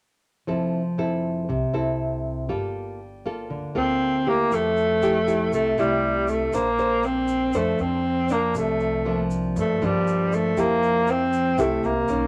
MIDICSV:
0, 0, Header, 1, 5, 480
1, 0, Start_track
1, 0, Key_signature, -1, "major"
1, 0, Tempo, 504202
1, 462, Time_signature, 4, 2, 24, 8
1, 11684, End_track
2, 0, Start_track
2, 0, Title_t, "Nylon-string guitar"
2, 0, Program_c, 0, 24
2, 451, Note_on_c, 0, 53, 53
2, 456, Note_on_c, 0, 60, 52
2, 459, Note_on_c, 0, 64, 50
2, 463, Note_on_c, 0, 69, 52
2, 767, Note_off_c, 0, 60, 0
2, 770, Note_off_c, 0, 64, 0
2, 770, Note_off_c, 0, 69, 0
2, 933, Note_on_c, 0, 60, 51
2, 940, Note_on_c, 0, 64, 57
2, 942, Note_on_c, 0, 69, 64
2, 1394, Note_off_c, 0, 53, 0
2, 1416, Note_off_c, 0, 60, 0
2, 1417, Note_off_c, 0, 64, 0
2, 1417, Note_on_c, 0, 48, 56
2, 1420, Note_off_c, 0, 69, 0
2, 1652, Note_on_c, 0, 60, 62
2, 1657, Note_on_c, 0, 64, 57
2, 1661, Note_on_c, 0, 69, 60
2, 2340, Note_off_c, 0, 60, 0
2, 2341, Note_off_c, 0, 64, 0
2, 2344, Note_off_c, 0, 69, 0
2, 2357, Note_off_c, 0, 48, 0
2, 2369, Note_on_c, 0, 55, 49
2, 2370, Note_on_c, 0, 58, 53
2, 2373, Note_on_c, 0, 65, 58
2, 2376, Note_on_c, 0, 69, 60
2, 2854, Note_off_c, 0, 58, 0
2, 2855, Note_off_c, 0, 65, 0
2, 2857, Note_off_c, 0, 69, 0
2, 3099, Note_on_c, 0, 58, 63
2, 3105, Note_on_c, 0, 65, 60
2, 3109, Note_on_c, 0, 69, 57
2, 3313, Note_off_c, 0, 55, 0
2, 3332, Note_on_c, 0, 50, 53
2, 3543, Note_off_c, 0, 58, 0
2, 3546, Note_off_c, 0, 65, 0
2, 3547, Note_off_c, 0, 69, 0
2, 3570, Note_on_c, 0, 58, 63
2, 3574, Note_on_c, 0, 65, 68
2, 3580, Note_on_c, 0, 69, 71
2, 4019, Note_off_c, 0, 58, 0
2, 4021, Note_off_c, 0, 65, 0
2, 4024, Note_off_c, 0, 69, 0
2, 4059, Note_on_c, 0, 57, 54
2, 4062, Note_on_c, 0, 64, 55
2, 4065, Note_on_c, 0, 67, 64
2, 4274, Note_off_c, 0, 50, 0
2, 4297, Note_on_c, 0, 53, 50
2, 4743, Note_off_c, 0, 57, 0
2, 4745, Note_off_c, 0, 64, 0
2, 4745, Note_off_c, 0, 67, 0
2, 4780, Note_on_c, 0, 57, 53
2, 4784, Note_on_c, 0, 64, 58
2, 4788, Note_on_c, 0, 67, 63
2, 4923, Note_off_c, 0, 57, 0
2, 4925, Note_off_c, 0, 64, 0
2, 4927, Note_off_c, 0, 67, 0
2, 5011, Note_on_c, 0, 57, 60
2, 5014, Note_on_c, 0, 64, 53
2, 5020, Note_on_c, 0, 67, 66
2, 5237, Note_off_c, 0, 53, 0
2, 5260, Note_on_c, 0, 48, 58
2, 5459, Note_off_c, 0, 57, 0
2, 5460, Note_off_c, 0, 64, 0
2, 5463, Note_off_c, 0, 67, 0
2, 5505, Note_on_c, 0, 57, 64
2, 5512, Note_on_c, 0, 64, 67
2, 5514, Note_on_c, 0, 67, 74
2, 6187, Note_off_c, 0, 57, 0
2, 6188, Note_off_c, 0, 64, 0
2, 6190, Note_off_c, 0, 67, 0
2, 6198, Note_off_c, 0, 48, 0
2, 6222, Note_on_c, 0, 58, 50
2, 6225, Note_on_c, 0, 62, 48
2, 6226, Note_on_c, 0, 69, 56
2, 6230, Note_on_c, 0, 72, 58
2, 6364, Note_off_c, 0, 62, 0
2, 6367, Note_off_c, 0, 69, 0
2, 6368, Note_off_c, 0, 72, 0
2, 6458, Note_on_c, 0, 62, 52
2, 6465, Note_on_c, 0, 69, 62
2, 6468, Note_on_c, 0, 72, 60
2, 7143, Note_off_c, 0, 62, 0
2, 7146, Note_off_c, 0, 69, 0
2, 7146, Note_off_c, 0, 72, 0
2, 7159, Note_off_c, 0, 58, 0
2, 7182, Note_on_c, 0, 53, 59
2, 7185, Note_on_c, 0, 62, 61
2, 7188, Note_on_c, 0, 72, 61
2, 7191, Note_on_c, 0, 69, 62
2, 7660, Note_off_c, 0, 62, 0
2, 7662, Note_off_c, 0, 69, 0
2, 7663, Note_off_c, 0, 72, 0
2, 7888, Note_off_c, 0, 53, 0
2, 7900, Note_on_c, 0, 53, 64
2, 7906, Note_on_c, 0, 62, 60
2, 8140, Note_on_c, 0, 48, 55
2, 8584, Note_off_c, 0, 53, 0
2, 8587, Note_off_c, 0, 62, 0
2, 8620, Note_on_c, 0, 53, 61
2, 8624, Note_on_c, 0, 58, 59
2, 8629, Note_on_c, 0, 62, 60
2, 9078, Note_off_c, 0, 48, 0
2, 9103, Note_on_c, 0, 43, 57
2, 9304, Note_off_c, 0, 53, 0
2, 9306, Note_off_c, 0, 58, 0
2, 9307, Note_off_c, 0, 62, 0
2, 9347, Note_on_c, 0, 53, 65
2, 9352, Note_on_c, 0, 58, 63
2, 9357, Note_on_c, 0, 62, 74
2, 10028, Note_off_c, 0, 53, 0
2, 10029, Note_off_c, 0, 58, 0
2, 10033, Note_off_c, 0, 62, 0
2, 10040, Note_off_c, 0, 43, 0
2, 10063, Note_on_c, 0, 53, 57
2, 10067, Note_on_c, 0, 64, 55
2, 10069, Note_on_c, 0, 67, 58
2, 10711, Note_off_c, 0, 64, 0
2, 10712, Note_off_c, 0, 67, 0
2, 11001, Note_off_c, 0, 53, 0
2, 11023, Note_on_c, 0, 57, 64
2, 11024, Note_on_c, 0, 48, 61
2, 11026, Note_on_c, 0, 64, 58
2, 11031, Note_on_c, 0, 67, 62
2, 11347, Note_off_c, 0, 57, 0
2, 11349, Note_off_c, 0, 64, 0
2, 11350, Note_off_c, 0, 67, 0
2, 11481, Note_off_c, 0, 48, 0
2, 11505, Note_on_c, 0, 51, 59
2, 11509, Note_on_c, 0, 58, 55
2, 11516, Note_on_c, 0, 61, 55
2, 11684, Note_off_c, 0, 51, 0
2, 11684, Note_off_c, 0, 58, 0
2, 11684, Note_off_c, 0, 61, 0
2, 11684, End_track
3, 0, Start_track
3, 0, Title_t, "Tenor saxophone"
3, 0, Program_c, 1, 66
3, 3589, Note_on_c, 1, 60, 94
3, 4077, Note_on_c, 1, 58, 87
3, 4092, Note_off_c, 1, 60, 0
3, 4317, Note_on_c, 1, 57, 93
3, 4331, Note_off_c, 1, 58, 0
3, 5267, Note_off_c, 1, 57, 0
3, 5273, Note_on_c, 1, 57, 80
3, 5516, Note_on_c, 1, 55, 86
3, 5530, Note_off_c, 1, 57, 0
3, 5992, Note_on_c, 1, 57, 79
3, 6006, Note_off_c, 1, 55, 0
3, 6228, Note_on_c, 1, 58, 85
3, 6242, Note_off_c, 1, 57, 0
3, 6711, Note_on_c, 1, 60, 94
3, 6725, Note_off_c, 1, 58, 0
3, 7192, Note_on_c, 1, 57, 79
3, 7206, Note_off_c, 1, 60, 0
3, 7431, Note_on_c, 1, 60, 92
3, 7446, Note_off_c, 1, 57, 0
3, 7922, Note_on_c, 1, 58, 80
3, 7936, Note_off_c, 1, 60, 0
3, 8153, Note_off_c, 1, 58, 0
3, 8159, Note_on_c, 1, 57, 76
3, 8816, Note_off_c, 1, 57, 0
3, 9135, Note_on_c, 1, 57, 75
3, 9376, Note_on_c, 1, 55, 86
3, 9390, Note_off_c, 1, 57, 0
3, 9847, Note_on_c, 1, 57, 85
3, 9861, Note_off_c, 1, 55, 0
3, 10089, Note_on_c, 1, 58, 96
3, 10103, Note_off_c, 1, 57, 0
3, 10570, Note_on_c, 1, 60, 101
3, 10585, Note_off_c, 1, 58, 0
3, 11046, Note_on_c, 1, 57, 85
3, 11060, Note_off_c, 1, 60, 0
3, 11281, Note_on_c, 1, 58, 79
3, 11295, Note_off_c, 1, 57, 0
3, 11684, Note_off_c, 1, 58, 0
3, 11684, End_track
4, 0, Start_track
4, 0, Title_t, "Upright bass"
4, 0, Program_c, 2, 32
4, 459, Note_on_c, 2, 29, 77
4, 1383, Note_off_c, 2, 29, 0
4, 1423, Note_on_c, 2, 36, 93
4, 1535, Note_off_c, 2, 36, 0
4, 1657, Note_on_c, 2, 36, 76
4, 2343, Note_off_c, 2, 36, 0
4, 2384, Note_on_c, 2, 31, 84
4, 3306, Note_off_c, 2, 31, 0
4, 3334, Note_on_c, 2, 38, 79
4, 3450, Note_off_c, 2, 38, 0
4, 3575, Note_on_c, 2, 38, 68
4, 4262, Note_off_c, 2, 38, 0
4, 4293, Note_on_c, 2, 41, 86
4, 5220, Note_off_c, 2, 41, 0
4, 5257, Note_on_c, 2, 36, 90
4, 5483, Note_off_c, 2, 36, 0
4, 5500, Note_on_c, 2, 36, 93
4, 6184, Note_off_c, 2, 36, 0
4, 6216, Note_on_c, 2, 34, 97
4, 7142, Note_off_c, 2, 34, 0
4, 7179, Note_on_c, 2, 41, 91
4, 7405, Note_off_c, 2, 41, 0
4, 7423, Note_on_c, 2, 41, 91
4, 8106, Note_off_c, 2, 41, 0
4, 8137, Note_on_c, 2, 36, 95
4, 9062, Note_off_c, 2, 36, 0
4, 9103, Note_on_c, 2, 43, 92
4, 9327, Note_off_c, 2, 43, 0
4, 9346, Note_on_c, 2, 43, 84
4, 10027, Note_off_c, 2, 43, 0
4, 10065, Note_on_c, 2, 41, 88
4, 10987, Note_off_c, 2, 41, 0
4, 11022, Note_on_c, 2, 36, 93
4, 11247, Note_off_c, 2, 36, 0
4, 11262, Note_on_c, 2, 36, 80
4, 11487, Note_off_c, 2, 36, 0
4, 11505, Note_on_c, 2, 35, 94
4, 11684, Note_off_c, 2, 35, 0
4, 11684, End_track
5, 0, Start_track
5, 0, Title_t, "Drums"
5, 4299, Note_on_c, 9, 82, 63
5, 4394, Note_off_c, 9, 82, 0
5, 4538, Note_on_c, 9, 82, 27
5, 4634, Note_off_c, 9, 82, 0
5, 4782, Note_on_c, 9, 82, 51
5, 4877, Note_off_c, 9, 82, 0
5, 5027, Note_on_c, 9, 82, 63
5, 5122, Note_off_c, 9, 82, 0
5, 5261, Note_on_c, 9, 82, 72
5, 5356, Note_off_c, 9, 82, 0
5, 5501, Note_on_c, 9, 82, 25
5, 5596, Note_off_c, 9, 82, 0
5, 5977, Note_on_c, 9, 82, 60
5, 6072, Note_off_c, 9, 82, 0
5, 6216, Note_on_c, 9, 82, 69
5, 6311, Note_off_c, 9, 82, 0
5, 6457, Note_on_c, 9, 82, 30
5, 6552, Note_off_c, 9, 82, 0
5, 6691, Note_on_c, 9, 82, 46
5, 6786, Note_off_c, 9, 82, 0
5, 6930, Note_on_c, 9, 82, 59
5, 7026, Note_off_c, 9, 82, 0
5, 7167, Note_on_c, 9, 82, 66
5, 7263, Note_off_c, 9, 82, 0
5, 7409, Note_on_c, 9, 82, 25
5, 7505, Note_off_c, 9, 82, 0
5, 7889, Note_on_c, 9, 82, 57
5, 7984, Note_off_c, 9, 82, 0
5, 8135, Note_on_c, 9, 82, 66
5, 8230, Note_off_c, 9, 82, 0
5, 8376, Note_on_c, 9, 82, 28
5, 8471, Note_off_c, 9, 82, 0
5, 8859, Note_on_c, 9, 82, 58
5, 8954, Note_off_c, 9, 82, 0
5, 9105, Note_on_c, 9, 82, 66
5, 9200, Note_off_c, 9, 82, 0
5, 9346, Note_on_c, 9, 82, 23
5, 9442, Note_off_c, 9, 82, 0
5, 9590, Note_on_c, 9, 82, 56
5, 9685, Note_off_c, 9, 82, 0
5, 9828, Note_on_c, 9, 82, 56
5, 9924, Note_off_c, 9, 82, 0
5, 10065, Note_on_c, 9, 82, 62
5, 10161, Note_off_c, 9, 82, 0
5, 10307, Note_on_c, 9, 82, 26
5, 10403, Note_off_c, 9, 82, 0
5, 10542, Note_on_c, 9, 82, 48
5, 10637, Note_off_c, 9, 82, 0
5, 10785, Note_on_c, 9, 82, 58
5, 10880, Note_off_c, 9, 82, 0
5, 11025, Note_on_c, 9, 82, 69
5, 11120, Note_off_c, 9, 82, 0
5, 11267, Note_on_c, 9, 82, 24
5, 11363, Note_off_c, 9, 82, 0
5, 11500, Note_on_c, 9, 82, 52
5, 11596, Note_off_c, 9, 82, 0
5, 11684, End_track
0, 0, End_of_file